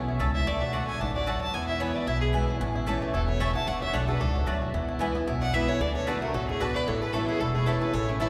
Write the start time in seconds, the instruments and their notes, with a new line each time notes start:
Already playing: upright bass B1, steel-string acoustic guitar B2, five-string banjo C#4 A4
0.08 five-string banjo E4
0.19 upright bass C#2, steel-string acoustic guitar C#3, mandolin A3 E4 C#5 A5, five-string banjo A4
0.34 five-string banjo E4, fiddle E5
0.46 upright bass D2, steel-string acoustic guitar D3, five-string banjo A3, fiddle D5
0.61 five-string banjo F#4, fiddle E5
0.73 steel-string acoustic guitar D3 A3 D4 F#4, mandolin A3 F#4 D5 A5, five-string banjo A3, fiddle F#5
0.88 five-string banjo A4, fiddle G#5
1.00 upright bass A1, steel-string acoustic guitar G#2, five-string banjo D4, fiddle A5
1.15 five-string banjo F#4, fiddle D5
1.26 steel-string acoustic guitar F#2, mandolin A3 F#4 D5 A5, five-string banjo A4, fiddle F#5
1.41 five-string banjo F#4, fiddle A5
1.54 upright bass E2, steel-string acoustic guitar E2, five-string banjo B3, fiddle G#5
1.68 five-string banjo E4, fiddle E5
1.80 steel-string acoustic guitar E3 G#3 B3 E4, mandolin B3 E4 B4 G#5, five-string banjo B3, fiddle C#5
1.95 five-string banjo E4, fiddle D5
2.07 upright bass B1, steel-string acoustic guitar B2, five-string banjo E4, fiddle E5
2.21 five-string banjo B3, fiddle G#4
2.33 steel-string acoustic guitar E3 G#3 B3 E4, mandolin B3 E4 B4 G#5, five-string banjo E4
2.48 steel-string acoustic guitar B3 E4, five-string banjo E4
2.60 upright bass A1, steel-string acoustic guitar A2, five-string banjo C#4
2.75 five-string banjo E4
2.86 steel-string acoustic guitar E3 A3 C#4 E4, mandolin A3 E4 C#5 A5, five-string banjo A4
3.02 five-string banjo A3
3.14 upright bass E1, steel-string acoustic guitar B2, resonator guitar played with a steel bar E4, five-string banjo E4, fiddle A4
3.28 five-string banjo A3, resonator guitar played with a steel bar A4, fiddle C#5
3.40 steel-string acoustic guitar C#3, mandolin A3 E4 C#5 A5, five-string banjo C#4, resonator guitar played with a steel bar C#5, fiddle E5
3.55 five-string banjo E4, resonator guitar played with a steel bar F#5, fiddle A5
3.67 upright bass D2, steel-string acoustic guitar D3, five-string banjo A3, resonator guitar played with a steel bar D5, fiddle F#5
3.81 five-string banjo F#4, resonator guitar played with a steel bar C#5, fiddle E5
3.93 upright bass B1, steel-string acoustic guitar D3 A3 D4 F#4, mandolin A3 F#4 D5 A5, five-string banjo D4, resonator guitar played with a steel bar A4, fiddle C#5
4.08 steel-string acoustic guitar D4 F#4, resonator guitar played with a steel bar G#4, five-string banjo A4, fiddle B4
4.20 upright bass C#2, steel-string acoustic guitar G#2, five-string banjo D4, resonator guitar played with a steel bar F#4, fiddle A4
4.35 five-string banjo F#4
4.46 upright bass D2, steel-string acoustic guitar F#2, mandolin A3 F#4 D5 A5, five-string banjo A3
4.62 five-string banjo F#4
4.74 upright bass E2, steel-string acoustic guitar E2, five-string banjo E4
4.89 five-string banjo E4
4.99 steel-string acoustic guitar E3 G#3 B3 E4, mandolin B3 E4 B4 G#5, five-string banjo E4
5.15 five-string banjo B3, steel-string acoustic guitar B3 E4
5.27 upright bass B1, steel-string acoustic guitar B2, five-string banjo E4
5.42 five-string banjo B3, resonator guitar played with a steel bar D5, fiddle F#5
5.54 steel-string acoustic guitar E3 G#3 B3 E4, mandolin B3 E4 B4 G#5, five-string banjo E4, resonator guitar played with a steel bar B4, fiddle E5
5.68 steel-string acoustic guitar B3 E4, five-string banjo E4, resonator guitar played with a steel bar A4, fiddle C#5
5.80 upright bass D2, steel-string acoustic guitar D3, five-string banjo D4, resonator guitar played with a steel bar A4, fiddle D5
5.95 resonator guitar played with a steel bar A4, fiddle C#5
6.07 steel-string acoustic guitar D3 A3 D4 F#4, mandolin A3 F#4 D5 A5, resonator guitar played with a steel bar F#4, five-string banjo A4, fiddle B4
6.22 five-string banjo A3, resonator guitar played with a steel bar F#4, fiddle A#4
6.33 upright bass A1, steel-string acoustic guitar C#3, resonator guitar played with a steel bar F#4, five-string banjo F#4, fiddle A4
6.48 five-string banjo A3, resonator guitar played with a steel bar E4, fiddle G#4
6.60 steel-string acoustic guitar B2, mandolin A3 F#4 D5 A5, five-string banjo D4, resonator guitar played with a steel bar F#4, fiddle B4
6.74 five-string banjo F#4, resonator guitar played with a steel bar B4, fiddle D5
6.86 upright bass A1, steel-string acoustic guitar A2, five-string banjo E4, resonator guitar played with a steel bar A4, fiddle C#5
7.02 resonator guitar played with a steel bar G#4, five-string banjo A4, fiddle B4
7.13 steel-string acoustic guitar E3 A3 C#4 E4, mandolin A3 E4 C#5 A5, five-string banjo A3, resonator guitar played with a steel bar E4, fiddle A4
7.27 resonator guitar played with a steel bar E4, five-string banjo E4, fiddle G#4
7.40 upright bass E1, steel-string acoustic guitar E2, resonator guitar played with a steel bar E4, fiddle A4, five-string banjo A4
7.54 five-string banjo A3, resonator guitar played with a steel bar E4, fiddle G#4
7.66 steel-string acoustic guitar E3 A3 C#4 E4, mandolin A3 E4 C#5 A5, resonator guitar played with a steel bar E4, five-string banjo E4, fiddle A4
7.81 steel-string acoustic guitar C#4 E4, resonator guitar played with a steel bar G#4, five-string banjo A4, fiddle B4
7.93 upright bass A1, steel-string acoustic guitar A2, five-string banjo C#4, resonator guitar played with a steel bar A4, fiddle C#5
8.08 five-string banjo A3, resonator guitar played with a steel bar C#4, fiddle E4
8.20 steel-string acoustic guitar E3 A3 C#4 E4, mandolin A3 E4 C#5 A5, five-string banjo E4, resonator guitar played with a steel bar E4, fiddle A4